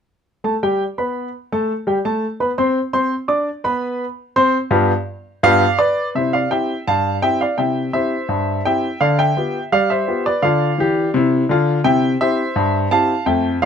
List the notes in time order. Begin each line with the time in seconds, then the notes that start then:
0.44 A3 A4 A5
0.63 G3 G4 G5
0.98 B3 B4 B5
1.52 A3 A4 A5
1.87 G3 G4 G5
2.05 A3 A4 A5
2.40 B3 B4 B5
2.58 C4 C5 C6
2.93 C4 C5 C6
3.28 D4 D5 D6
3.64 B3 B4 B5
4.36 C4 C5 C6
4.71 G2 B3 F4 G4
5.43 G2 B3 F4 G4 D5 F5
5.79 B4 D5
6.15 C3 E4 C5 E5
6.33 D5 F5
6.51 C4 E4 G4 E5 G5
6.88 G2 F5 A5
7.22 C4 E4 G4 E5 G5
7.41 D5 F5
7.58 C3 E4 E5 G5
7.93 C4 E4 G4 C5 E5
8.29 G2
8.65 C4 E4 G4 E5 G5
9.01 D3 D5 F5
9.19 E5 G5
9.37 B3 F4 G4
9.72 G3 D5 F5
9.90 C5 E5
10.08 B3 F4 G4
10.26 B4 D5
10.42 D3 F4 D5 F5
10.78 E3 G4
11.14 C3 E4
11.49 D3 F4
11.84 C3 E4 E5 G5
12.21 C4 E4 G4 C5 E5
12.56 G2
12.91 C4 E4 G4 F5 A5
13.26 F2 A3 E5 G5
13.62 A3 C4 F5